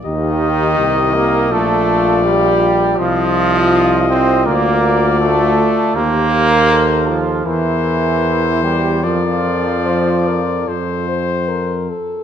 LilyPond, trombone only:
\new Staff \with { instrumentName = "Trombone" } { \clef bass \time 4/4 \key bes \major \tempo 4 = 80 ees4. bes8 a4 g4 | f4. c'8 bes4 a4 | bes4. f8 e4. g8 | f2. r4 | }